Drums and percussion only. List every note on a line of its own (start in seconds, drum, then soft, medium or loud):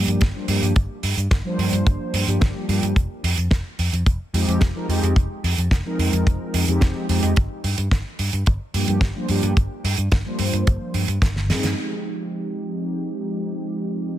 0.08 closed hi-hat medium
0.21 kick loud
0.21 snare loud
0.21 closed hi-hat medium
0.48 open hi-hat loud
0.63 closed hi-hat medium
0.76 kick loud
0.76 closed hi-hat medium
1.03 open hi-hat loud
1.18 closed hi-hat medium
1.31 kick loud
1.31 snare loud
1.31 closed hi-hat medium
1.59 open hi-hat loud
1.73 closed hi-hat medium
1.87 kick loud
1.87 closed hi-hat medium
2.14 open hi-hat loud
2.28 closed hi-hat medium
2.41 kick loud
2.41 snare loud
2.41 closed hi-hat medium
2.69 open hi-hat loud
2.83 closed hi-hat medium
2.96 kick loud
2.96 closed hi-hat medium
3.24 open hi-hat loud
3.37 closed hi-hat medium
3.51 kick loud
3.51 snare loud
3.51 closed hi-hat medium
3.79 open hi-hat loud
3.93 closed hi-hat medium
4.06 kick loud
4.06 closed hi-hat medium
4.34 open hi-hat loud
4.49 closed hi-hat medium
4.61 kick loud
4.61 snare loud
4.61 closed hi-hat medium
4.90 open hi-hat medium
5.03 closed hi-hat medium
5.16 kick loud
5.16 closed hi-hat medium
5.44 open hi-hat loud
5.58 closed hi-hat medium
5.71 kick loud
5.71 snare loud
5.71 closed hi-hat medium
5.99 open hi-hat loud
6.13 closed hi-hat medium
6.27 kick loud
6.27 closed hi-hat medium
6.54 open hi-hat loud
6.68 closed hi-hat medium
6.81 kick loud
6.81 snare loud
6.81 closed hi-hat medium
7.09 open hi-hat loud
7.23 closed hi-hat medium
7.36 kick loud
7.36 closed hi-hat medium
7.64 open hi-hat medium
7.78 closed hi-hat medium
7.91 kick loud
7.91 snare loud
7.91 closed hi-hat medium
8.19 open hi-hat loud
8.33 closed hi-hat medium
8.46 kick loud
8.46 closed hi-hat medium
8.74 open hi-hat loud
8.88 closed hi-hat medium
9.01 kick loud
9.01 snare loud
9.01 closed hi-hat medium
9.28 open hi-hat loud
9.43 closed hi-hat medium
9.57 kick loud
9.57 closed hi-hat medium
9.85 open hi-hat loud
9.97 closed hi-hat medium
10.12 kick loud
10.12 snare loud
10.12 closed hi-hat medium
10.39 open hi-hat loud
10.53 closed hi-hat medium
10.67 kick loud
10.67 closed hi-hat medium
10.94 open hi-hat loud
11.08 closed hi-hat medium
11.22 kick loud
11.22 snare loud
11.22 closed hi-hat medium
11.36 snare soft
11.50 snare medium
11.50 open hi-hat loud
11.63 snare medium
11.63 closed hi-hat medium